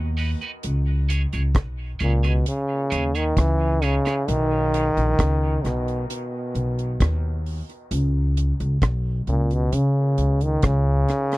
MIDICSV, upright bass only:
0, 0, Header, 1, 2, 480
1, 0, Start_track
1, 0, Key_signature, 5, "major"
1, 0, Tempo, 909091
1, 336, Time_signature, 4, 2, 24, 8
1, 6007, End_track
2, 0, Start_track
2, 0, Title_t, "Upright bass"
2, 0, Program_c, 0, 32
2, 0, Note_on_c, 0, 39, 110
2, 176, Note_off_c, 0, 39, 0
2, 340, Note_on_c, 0, 37, 92
2, 656, Note_off_c, 0, 37, 0
2, 704, Note_on_c, 0, 37, 91
2, 820, Note_off_c, 0, 37, 0
2, 820, Note_on_c, 0, 35, 94
2, 1027, Note_off_c, 0, 35, 0
2, 1059, Note_on_c, 0, 37, 99
2, 1266, Note_off_c, 0, 37, 0
2, 1541, Note_on_c, 0, 39, 93
2, 1747, Note_off_c, 0, 39, 0
2, 1780, Note_on_c, 0, 37, 101
2, 2095, Note_off_c, 0, 37, 0
2, 2261, Note_on_c, 0, 35, 106
2, 2576, Note_off_c, 0, 35, 0
2, 2624, Note_on_c, 0, 34, 98
2, 2722, Note_off_c, 0, 34, 0
2, 2742, Note_on_c, 0, 37, 91
2, 2948, Note_off_c, 0, 37, 0
2, 2980, Note_on_c, 0, 35, 93
2, 3186, Note_off_c, 0, 35, 0
2, 3456, Note_on_c, 0, 35, 88
2, 3664, Note_off_c, 0, 35, 0
2, 3700, Note_on_c, 0, 39, 109
2, 4015, Note_off_c, 0, 39, 0
2, 4176, Note_on_c, 0, 37, 106
2, 4493, Note_off_c, 0, 37, 0
2, 4541, Note_on_c, 0, 37, 92
2, 4641, Note_off_c, 0, 37, 0
2, 4658, Note_on_c, 0, 35, 100
2, 4865, Note_off_c, 0, 35, 0
2, 4895, Note_on_c, 0, 37, 90
2, 5104, Note_off_c, 0, 37, 0
2, 5133, Note_on_c, 0, 49, 94
2, 5342, Note_off_c, 0, 49, 0
2, 5374, Note_on_c, 0, 37, 85
2, 5583, Note_off_c, 0, 37, 0
2, 5616, Note_on_c, 0, 37, 101
2, 5824, Note_off_c, 0, 37, 0
2, 6007, End_track
0, 0, End_of_file